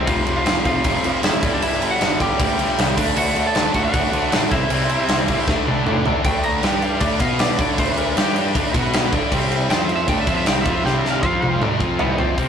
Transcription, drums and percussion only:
0.07 kick, crash
0.27 crash
0.46 snare, crash
0.65 kick, crash
0.84 kick, crash
1.04 crash
1.23 snare, crash
1.43 kick, crash
1.62 crash
1.82 crash
2.01 snare, crash
2.20 kick, crash
2.39 kick, crash
2.59 crash
2.79 snare, crash
2.98 kick, crash
3.16 crash
3.36 crash
3.55 snare, crash
3.74 kick, crash
3.94 kick, crash
4.13 crash
4.32 snare, crash
4.51 kick, crash
4.70 crash
4.89 crash
5.08 snare, crash
5.28 kick, crash
5.48 kick, snare
5.67 high tom
5.87 mid tom
6.06 floor tom
6.24 kick, crash
6.43 crash
6.63 snare, crash
6.82 crash
7.00 kick, crash
7.20 kick, crash
7.39 snare, crash
7.59 kick, crash
7.78 kick, crash
7.97 crash
8.17 snare, crash
8.36 crash
8.55 kick, crash
8.74 kick, crash
8.93 snare, crash
9.13 kick, crash
9.32 kick, crash
9.52 crash
9.70 snare, crash
9.89 crash
10.08 kick, crash
10.27 kick, crash
10.46 snare, crash
10.66 kick, crash
10.86 snare
11.05 snare
11.23 kick
11.42 high tom
11.62 mid tom
11.80 kick
11.99 floor tom
12.18 floor tom
12.38 kick, open hi-hat

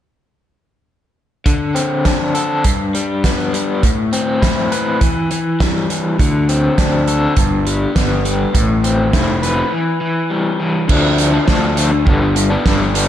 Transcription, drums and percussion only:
1.46 kick, closed hi-hat
1.76 closed hi-hat
2.05 kick, snare, closed hi-hat
2.35 closed hi-hat
2.64 kick, closed hi-hat
2.95 closed hi-hat
3.24 kick, snare, closed hi-hat
3.54 closed hi-hat
3.83 kick, closed hi-hat
4.13 closed hi-hat
4.42 kick, snare, closed hi-hat
4.72 closed hi-hat
5.01 kick, closed hi-hat
5.31 closed hi-hat
5.60 kick, snare, closed hi-hat
5.90 closed hi-hat
6.19 kick, closed hi-hat
6.49 closed hi-hat
6.78 kick, snare, closed hi-hat
7.08 closed hi-hat
7.37 kick, closed hi-hat
7.67 closed hi-hat
7.96 kick, snare, closed hi-hat
8.25 closed hi-hat
8.55 kick, closed hi-hat
8.84 closed hi-hat
9.13 kick, snare, closed hi-hat
9.43 closed hi-hat
10.89 kick, crash
11.18 closed hi-hat
11.48 kick, snare
11.77 closed hi-hat
12.07 kick
12.36 closed hi-hat
12.66 kick, snare
12.95 closed hi-hat

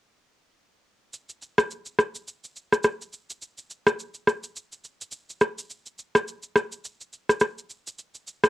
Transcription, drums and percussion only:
1.13 shaker
1.29 shaker
1.42 shaker
1.58 cross-stick, shaker
1.71 shaker
1.85 shaker
1.99 cross-stick, shaker
2.15 shaker
2.28 shaker
2.44 shaker
2.56 shaker
2.72 cross-stick, shaker
2.83 cross-stick, shaker
3.01 shaker
3.13 shaker
3.30 shaker
3.42 shaker
3.58 shaker
3.70 shaker
3.87 cross-stick, shaker
3.99 shaker
4.14 shaker
4.27 cross-stick, shaker
4.43 shaker
4.56 shaker
4.72 shaker
4.84 shaker
5.01 shaker
5.12 shaker
5.30 shaker
5.41 cross-stick, shaker
5.59 shaker
5.70 shaker
5.86 shaker
5.99 shaker
6.15 cross-stick, shaker
6.28 shaker
6.43 shaker
6.56 cross-stick, shaker
6.72 shaker
6.85 shaker
7.01 shaker
7.13 shaker
7.29 cross-stick, shaker
7.40 cross-stick, shaker
7.58 shaker
7.70 shaker
7.87 shaker
7.98 shaker
8.15 shaker
8.27 shaker
8.44 cross-stick, shaker

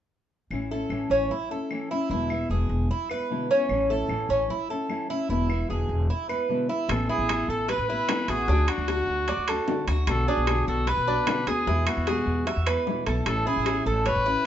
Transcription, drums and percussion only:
0.51 claves
0.90 claves
1.71 claves
2.30 claves
3.10 claves
3.69 claves
4.09 claves
4.90 claves
5.50 claves
6.30 claves
6.89 high bongo, high timbale, claves
7.09 high bongo
7.29 high bongo, high timbale, claves
7.68 high bongo, high timbale
7.89 high bongo
8.08 high bongo, low bongo, high timbale, low timbale, claves
8.28 high bongo, high timbale
8.48 high bongo
8.68 high bongo, high timbale, claves
8.88 high bongo, high timbale
9.28 high bongo, high timbale
9.47 high bongo, high timbale, claves
9.68 high bongo, low bongo, low timbale
9.88 high bongo, high timbale
10.07 high bongo, high timbale, claves
10.28 high bongo
10.47 high bongo, high timbale, claves
10.87 high bongo, high timbale
11.07 high bongo
11.27 high bongo, low bongo, high timbale, low timbale, claves
11.47 high bongo, high timbale
11.67 high bongo
11.87 high bongo, high timbale, claves
12.07 high bongo, high timbale
12.47 high bongo, high timbale
12.66 high bongo, high timbale, claves
12.87 high bongo, low bongo
13.06 high bongo, high timbale
13.26 high bongo, high timbale, claves
13.46 high bongo
13.66 high bongo, high timbale, claves
14.06 high bongo, high timbale
14.26 high bongo

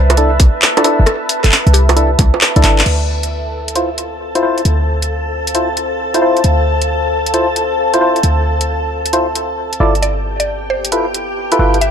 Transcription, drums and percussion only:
0.10 cross-stick, closed hi-hat, high bongo
0.17 closed hi-hat
0.40 kick, open hi-hat
0.62 clap
0.77 closed hi-hat, high bongo
0.84 open hi-hat, high bongo
1.07 cross-stick, closed hi-hat
1.29 open hi-hat
1.44 clap, closed hi-hat
1.52 clap
1.67 closed hi-hat
1.74 open hi-hat
1.89 cross-stick, open hi-hat, high bongo
1.97 closed hi-hat
2.19 kick, open hi-hat
2.34 high bongo
2.41 clap
2.56 closed hi-hat
2.64 clap, open hi-hat
2.79 clap, closed hi-hat
2.86 closed hi-hat, crash
3.23 closed hi-hat
3.68 closed hi-hat
3.75 closed hi-hat
3.98 closed hi-hat
4.35 closed hi-hat
4.58 closed hi-hat
4.65 closed hi-hat
5.02 closed hi-hat
5.47 closed hi-hat
5.55 closed hi-hat
5.77 closed hi-hat
6.14 closed hi-hat
6.37 closed hi-hat
6.44 closed hi-hat
6.82 closed hi-hat
7.26 closed hi-hat
7.34 closed hi-hat
7.56 closed hi-hat
7.94 closed hi-hat
8.16 closed hi-hat
8.23 closed hi-hat
8.61 closed hi-hat
9.06 closed hi-hat
9.13 closed hi-hat
9.35 closed hi-hat
9.73 closed hi-hat
9.95 closed hi-hat
10.03 closed hi-hat
10.40 closed hi-hat
10.85 closed hi-hat
10.92 closed hi-hat
11.14 closed hi-hat
11.52 closed hi-hat
11.74 closed hi-hat
11.81 closed hi-hat

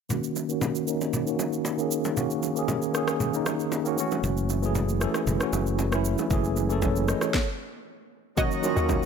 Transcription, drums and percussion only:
0.10 low conga, shaker
0.24 shaker
0.36 low bongo, shaker
0.49 shaker
0.61 high bongo, low bongo, low conga, shaker
0.75 shaker
0.88 shaker
1.01 high bongo, shaker
1.13 low conga, shaker
1.27 shaker
1.39 high bongo, low bongo, shaker
1.53 shaker
1.65 high bongo, shaker
1.79 shaker
1.91 shaker
2.05 low bongo, shaker
2.17 low conga, shaker
2.30 shaker
2.43 low bongo, shaker
2.56 shaker
2.68 high bongo, low bongo, low conga, shaker
2.82 shaker
2.94 cross-stick, shaker
3.08 cross-stick, high bongo, shaker
3.20 low conga, shaker
3.34 shaker
3.46 cross-stick, high bongo, low bongo, shaker
3.60 shaker
3.72 high bongo, shaker
3.85 shaker
3.98 shaker
4.11 low bongo, shaker
4.24 low conga, shaker
4.37 shaker
4.49 low bongo, shaker
4.63 shaker
4.75 high bongo, low bongo, low conga, shaker
4.89 shaker
5.01 cross-stick, shaker
5.14 cross-stick, high bongo, shaker
5.27 low conga, shaker
5.41 cross-stick, shaker
5.53 high bongo, low bongo, shaker
5.67 shaker
5.79 high bongo, shaker
5.92 cross-stick, shaker
6.05 shaker
6.18 low bongo, shaker
6.31 kick, low conga, shaker
6.44 shaker
6.56 low bongo, shaker
6.70 shaker
6.82 kick, high bongo, low bongo, low conga, shaker
6.96 shaker
7.08 cross-stick, shaker
7.21 cross-stick, high bongo, shaker
7.34 kick, snare
8.38 kick, low conga, shaker
8.51 shaker
8.63 low bongo, shaker
8.77 shaker
8.89 kick, high bongo, low bongo, low conga, shaker

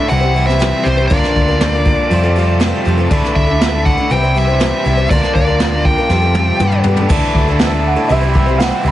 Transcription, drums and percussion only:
0.11 open hi-hat
0.36 open hi-hat
0.49 snare
0.61 snare, open hi-hat
0.86 open hi-hat
1.11 kick, open hi-hat
1.24 snare
1.36 kick, open hi-hat
1.61 snare, open hi-hat
1.85 kick, open hi-hat
2.11 open hi-hat
2.36 open hi-hat
2.60 snare, open hi-hat
2.86 open hi-hat
3.10 kick, open hi-hat
3.24 snare
3.36 kick, open hi-hat
3.61 snare, open hi-hat
3.86 kick, open hi-hat
4.11 open hi-hat
4.36 open hi-hat
4.60 snare, open hi-hat
4.86 open hi-hat
5.10 kick, open hi-hat
5.22 snare
5.35 kick, open hi-hat
5.60 snare, open hi-hat
5.85 kick, open hi-hat
6.09 snare
6.35 high tom
6.60 mid tom
6.71 mid tom
6.83 floor tom
6.96 floor tom
7.10 kick, crash
7.35 kick
7.60 snare, open hi-hat
8.10 open hi-hat
8.35 kick
8.60 snare, open hi-hat

